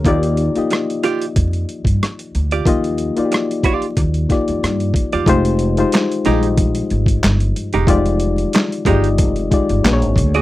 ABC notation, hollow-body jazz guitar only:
X:1
M:4/4
L:1/16
Q:"Swing 16ths" 1/4=92
K:Fdor
V:1 name="Hollow-body jazz guitar"
z6 [FGd] z8 [FGd] | z6 [FGd] z8 [FGd] | z6 [A,EG] z8 [A,EG] | z6 [A,EG] z8 [^FAd] |]